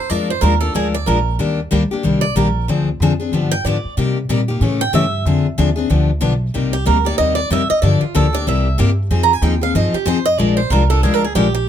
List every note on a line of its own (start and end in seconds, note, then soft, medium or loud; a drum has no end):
0.10 0.41 F2 medium
0.10 0.30 F3 medium
0.10 0.30 G#3 medium
0.10 0.30 D4 medium
0.10 0.30 F4 medium
0.10 0.31 A#4 medium
0.10 0.29 D5 medium
0.30 0.43 C5 medium
0.41 0.74 D#2 medium
0.41 0.53 F3 medium
0.41 0.53 G#3 medium
0.41 0.53 D4 medium
0.41 0.54 F4 medium
0.41 0.60 A#4 medium
0.41 0.54 A#4 medium
0.61 0.74 D4 soft
0.61 0.74 F4 medium
0.61 0.74 A4 medium
0.61 0.74 A#4 medium
0.74 1.06 D2 medium
0.74 0.94 F3 medium
0.74 0.95 G#3 medium
0.74 0.95 D4 medium
0.74 0.95 F4 medium
0.74 0.87 G#4 medium
0.74 0.95 A#4 medium
0.94 1.07 D5 medium
1.06 1.38 A#1 medium
1.06 1.18 F3 medium
1.06 1.18 G#3 medium
1.06 1.18 D4 medium
1.06 1.18 F4 medium
1.06 1.37 A#4 medium
1.06 1.18 A#4 medium
1.39 1.71 D#2 medium
1.39 1.59 D#3 medium
1.39 1.59 G3 medium
1.39 1.59 A#3 medium
1.39 1.59 D4 medium
1.39 1.60 G4 medium
1.71 1.90 D2 medium
1.71 1.82 D#3 medium
1.71 1.82 G3 medium
1.71 1.82 A#3 medium
1.71 1.82 D4 medium
1.71 1.82 G4 medium
1.91 2.04 A#3 medium
1.91 2.03 D4 medium
1.91 2.03 G4 medium
1.91 muted upright bass stroke soft
2.03 2.35 C2 medium
2.03 2.23 D#3 medium
2.03 2.24 G3 medium
2.03 2.24 A#3 medium
2.03 2.24 D4 medium
2.03 2.24 G4 medium
2.21 2.35 D5 loud
2.35 2.67 A#1 medium
2.35 2.47 D#3 medium
2.35 2.47 G3 medium
2.35 2.47 A#3 medium
2.35 2.47 D4 medium
2.35 2.47 G4 medium
2.35 2.66 A#4 medium
2.68 2.99 D2 medium
2.68 2.88 D3 medium
2.68 2.88 F3 medium
2.68 2.88 C4 medium
2.68 2.89 D4 medium
2.68 2.89 G#4 medium
3.00 3.31 F2 loud
3.00 3.12 D3 medium
3.00 3.12 F3 medium
3.00 3.12 C4 medium
3.00 3.12 D4 medium
3.00 3.12 G#4 medium
3.20 3.33 C4 soft
3.20 3.32 D4 medium
3.20 3.32 G#4 medium
3.32 3.63 G2 medium
3.32 3.52 D3 medium
3.32 3.53 F3 medium
3.32 3.53 B3 medium
3.32 3.53 D4 medium
3.32 3.53 G4 medium
3.51 3.64 G5 loud
3.65 3.82 G#2 medium
3.65 3.76 D3 medium
3.65 3.76 F3 medium
3.65 3.76 B3 medium
3.65 3.76 D4 medium
3.65 3.76 G4 medium
3.65 3.95 D5 medium
3.85 muted upright bass stroke soft
3.97 4.17 C3 medium
3.97 4.28 C3 medium
3.97 4.17 G3 medium
3.97 4.17 A#3 medium
3.97 4.17 D#4 medium
3.97 4.17 G4 medium
4.29 4.60 A#2 medium
4.29 4.40 C3 medium
4.29 4.40 G3 medium
4.29 4.40 A#3 medium
4.29 4.40 D#4 medium
4.29 4.40 G4 medium
4.48 4.62 A#3 soft
4.48 4.61 D#4 medium
4.48 4.61 G4 medium
4.61 4.92 A2 medium
4.61 4.81 C#3 medium
4.61 4.81 E3 medium
4.61 4.82 A3 medium
4.61 4.81 C#4 medium
4.61 4.82 G4 medium
4.81 4.93 G5 loud
4.93 5.24 G2 medium
4.93 5.04 C#3 medium
4.93 5.04 E3 medium
4.93 5.04 A3 medium
4.93 5.04 C#4 medium
4.93 5.04 G4 medium
4.93 5.24 E5 medium
5.25 5.57 F2 medium
5.25 5.46 D3 medium
5.25 5.46 F3 medium
5.25 5.46 C4 medium
5.25 5.46 D4 medium
5.25 5.46 G#4 medium
5.58 5.89 D#2 loud
5.58 5.68 D3 medium
5.58 5.68 F3 medium
5.58 5.69 C4 medium
5.58 5.69 D4 loud
5.58 5.69 G#4 loud
5.76 5.90 C4 soft
5.76 5.89 D4 medium
5.76 5.89 G#4 medium
5.90 6.21 D2 medium
5.90 6.09 D3 medium
5.90 6.10 F3 medium
5.90 6.10 B3 medium
5.90 6.10 D4 medium
5.90 6.10 G4 medium
6.21 6.53 B1 medium
6.21 6.32 D3 medium
6.21 6.32 F3 medium
6.21 6.32 B3 medium
6.21 6.32 D4 loud
6.21 6.32 G4 loud
6.54 6.86 C2 medium
6.54 6.74 C3 medium
6.54 6.74 G3 medium
6.54 6.74 A#3 medium
6.54 6.74 D#4 medium
6.54 6.75 G4 medium
6.73 6.86 G4 medium
6.85 7.18 D2 loud
6.85 6.96 C3 medium
6.85 6.97 G3 medium
6.85 6.97 A#3 medium
6.85 6.97 D#4 medium
6.85 6.97 G4 medium
6.85 7.05 A#4 medium
7.05 7.18 A#3 soft
7.05 7.18 D#4 soft
7.05 7.17 G4 medium
7.05 7.17 D5 medium
7.18 7.50 D#2 medium
7.18 7.38 C3 medium
7.18 7.39 G3 medium
7.18 7.39 A#3 medium
7.18 7.39 D#4 medium
7.18 7.39 G4 medium
7.18 7.35 D#5 medium
7.35 7.49 D5 medium
7.50 7.68 F2 medium
7.50 7.61 C3 medium
7.50 7.61 G3 medium
7.50 7.62 A#3 medium
7.50 7.62 D#4 medium
7.50 7.62 G4 medium
7.50 7.69 E5 loud
7.70 7.81 D#5 medium
7.70 muted upright bass stroke soft
7.82 8.00 G2 medium
7.82 8.02 D3 medium
7.82 8.03 F3 medium
7.82 8.03 A#3 medium
7.82 8.03 D4 medium
7.82 8.03 G4 medium
7.82 8.01 D5 medium
8.01 8.14 F4 soft
8.01 muted upright bass stroke soft
8.15 8.46 D2 loud
8.15 8.25 D3 medium
8.15 8.25 F3 medium
8.15 8.26 A#3 medium
8.15 8.26 D4 loud
8.15 8.26 G4 medium
8.15 8.34 A4 medium
8.33 8.46 A#3 soft
8.33 8.46 D4 medium
8.33 8.46 G4 medium
8.33 8.47 D5 medium
8.47 8.78 C2 medium
8.47 8.67 C3 medium
8.47 8.67 G3 medium
8.47 8.67 A#3 medium
8.47 8.67 E4 medium
8.47 8.67 G4 medium
8.47 8.78 E5 medium
8.78 9.10 G2 medium
8.78 8.89 C3 medium
8.78 8.89 G3 medium
8.78 8.90 A#3 medium
8.78 8.90 E4 loud
8.78 8.90 G4 loud
9.10 9.41 F2 medium
9.10 9.31 F3 medium
9.10 9.31 C4 medium
9.10 9.31 D#4 medium
9.10 9.31 G#4 medium
9.23 9.33 A#5 medium
9.33 9.44 G#5 medium
9.42 9.74 D#2 loud
9.42 9.53 F3 medium
9.42 9.54 C4 medium
9.42 9.54 D#4 loud
9.42 9.54 G#4 medium
9.42 9.62 G5 medium
9.61 9.74 C4 soft
9.61 9.74 D#4 medium
9.61 9.74 G#4 medium
9.61 9.75 F5 medium
9.75 9.93 G2 medium
9.75 9.95 F3 medium
9.75 9.95 C4 medium
9.75 9.95 D#4 medium
9.75 9.96 G#4 medium
9.75 9.94 D#5 medium
9.93 10.07 G4 medium
9.93 muted upright bass stroke soft
10.06 10.37 F2 medium
10.06 10.17 F3 medium
10.06 10.17 C4 loud
10.06 10.18 D#4 medium
10.06 10.18 G#4 loud
10.06 10.26 C5 medium
10.26 10.39 D#5 loud
10.38 10.70 A#1 medium
10.38 10.59 F3 medium
10.38 10.59 G#3 medium
10.38 10.59 D4 medium
10.38 10.59 F4 medium
10.38 10.59 A#4 medium
10.38 10.56 D5 medium
10.57 10.70 C5 medium
10.70 11.02 C2 loud
10.70 10.82 F3 medium
10.70 10.82 G#3 medium
10.70 10.83 D4 medium
10.70 10.83 F4 medium
10.70 10.90 A#4 medium
10.70 10.83 A#4 medium
10.90 11.03 D4 soft
10.90 11.03 F4 medium
10.90 11.03 A4 medium
10.90 11.03 A#4 medium
11.03 11.34 D2 medium
11.03 11.24 F3 medium
11.03 11.24 G#3 medium
11.03 11.24 D4 medium
11.03 11.24 F4 medium
11.03 11.14 G#4 medium
11.03 11.24 A#4 medium
11.14 11.24 A#4 medium
11.24 11.35 G#4 medium
11.35 11.67 A#1 medium
11.35 11.46 F3 medium
11.35 11.46 G#3 medium
11.35 11.47 D4 medium
11.35 11.47 F4 medium
11.35 11.53 G4 medium
11.35 11.47 A#4 medium
11.55 11.69 G4 medium